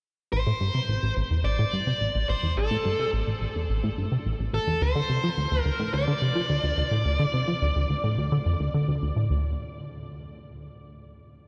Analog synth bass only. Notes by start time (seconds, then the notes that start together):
0.33 A1
0.47 A2
0.61 G2
0.75 C3
0.89 A1
1.03 A1
1.17 A1
1.31 E2
1.45 A1
1.59 A2
1.73 G2
1.87 C3
2.01 A1
2.15 A1
2.29 A1
2.43 E2
2.57 A1
2.71 A2
2.85 G2
2.99 C3
3.13 A1
3.27 A1
3.41 A1
3.56 E2
3.70 A1
3.83 A2
3.98 G2
4.12 C3
4.25 A1
4.39 A1
4.53 A1
4.67 E2
4.81 D2
4.95 D3
5.09 C3
5.23 F3
5.37 D2
5.51 D2
5.65 D2
5.79 A2
5.94 D2
6.08 D3
6.22 C3
6.35 F3
6.49 D2
6.63 D2
6.77 D2
6.91 A2
7.05 D2
7.19 D3
7.34 C3
7.48 F3
7.62 D2
7.76 D2
7.90 D2
8.04 A2
8.18 D2
8.32 D3
8.46 F2
8.60 D2
8.74 D3
8.88 D2
9.02 D2
9.16 A2
9.30 D2